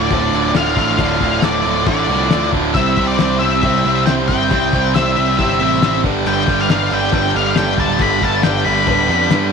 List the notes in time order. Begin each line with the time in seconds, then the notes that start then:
Already playing: A2 D3 D4 F4 A4 D5
0.00 D4 F4 A4
0.10 D1 D2 A2 D3 F4 A4 C5, kick, crash
0.21 D4 F4 A4
0.33 D1 D2 A2 D3 F3 D4 F4 A4
0.54 D1 D2 A2 D3 F3 D4 F4 A4 F5, snare, crash
0.66 D4 F4 A4
0.76 A1 D2 A2 D3 F3 D4 F4 F5, kick
0.98 D1 D2 A2 D3 F3 D4 F4 A4 D5, kick, crash
1.20 D1 D2 A2 D3 F3 D4 F4 A4, kick
1.42 D1 D2 A2 D3 F3 D4 F4 A4 D5, snare, crash
1.64 D1 D2 A2 D3 F3 D4 F4 A4
1.75 D4 F4 A4
1.86 A1 D2 A2 D3 F4 A4 D5, kick, crash
1.98 D4 F4 A4
2.08 C2 D2 A2 D3 F3 D4 F4 A4
2.30 D2 A2 D3 F3 D4 F4 A4 D5, snare, crash
2.42 D4 F4 A4
2.53 D1 D2 A2 D3 F3 D4 F4, kick
2.57 A4
2.74 C2 C3 G3 C4 E4 G4 C5 E5, kick, crash
2.97 C2 C3 G3 C4 E4 C5, kick
3.07 D5
3.19 C2 C3 G3 C4 E4 G4 C5, snare, crash
3.39 C2 C3 G3 C4 E4 E5
3.44 C5
3.52 C4 E4 C5
3.63 C2 C3 G3 C4 E4 G4 C5, kick, crash
3.74 C4 E4 C5
3.84 C2 C3 G3 C4 E4
4.06 C2 C3 G3 C4 E4 G4 C5 G5, snare, crash
4.17 C4 C5
4.28 G1 C3 G3 C4 E4 C5 G5, kick
4.50 C2 C3 G3 C4 E4 G4 C5, kick, crash
4.72 C2 C3 G3 C4 E4 C5, kick
4.94 C2 C3 G3 C4 E4 G4 C5 E5, snare, crash
5.15 C2 C3 G3 C4 E4 C5
5.27 C4 E4 C5
5.38 G1 C3 G3 C4 E4 G4 C5 E5, kick, crash
5.48 C4 E4 C5
5.60 A1 C3 G3 C4 E4
5.81 A1 C3 G3 C4 E4 G4 C5, snare, crash
5.92 C4 E4 C5
6.03 G1 G2 D3 G3 B3 D4 G4 B4, kick
6.25 G1 G2 D3 G3 B3 D4 B4 G5, crash
6.47 G1 G2 D3 G3, kick
6.61 F5
6.69 G1 G2 D3 G3 B3 D4 G4 B4, snare, crash
6.91 G1 G2 D3 G3 B3 G5
7.02 G3 B3 D4 B4
7.12 G1 G2 D3 G3 D4 G4 B4 G5, kick, crash
7.24 G3 B3 D4 B4
7.34 G1 G2 D3 G3 B3 D4 B4 F5
7.56 G1 G2 D3 G3 B3 D4 G4 A4 G5, snare, crash
7.60 B4
7.67 G3 B3 D4 B4
7.77 D1 G2 D3 G3 B3 D4 B4 A5, kick
7.99 G1 G2 D3 G3 B3 D4 G4 A4 B4 B5, kick, crash
8.21 G1 G2 D3 G3 B3 D4 A5, kick
8.26 B4
8.43 G1 G2 D3 G3 B3 D4 G4 B4 G5, snare, crash
8.65 G1 G2 D3 G3 B3 D4 B5
8.76 G3 B3 D4 B4
8.87 D1 G2 D3 G3 D4 G4 B4, kick, crash
8.98 G3 B3 D4 B4
9.09 F2 G2 D3 G3 B3 B4
9.30 G2 D3 G3 B3 D4 G4 B4, snare, crash
9.42 G3 D4